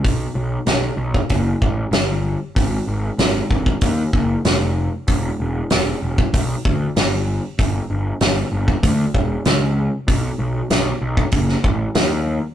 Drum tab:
HH |o---o---o---o---|o---o---o---o---|o---o---o---o---|o---o---o---o---|
SD |----o-------o---|----o-------o---|----o-------o---|----o-------o---|
BD |o------oo-o-----|o-----ooo-o-----|o------oo-o-----|o------oo-o-----|

HH |o---o---o---o---|
SD |----o----o--o---|
BD |o------oo-o-----|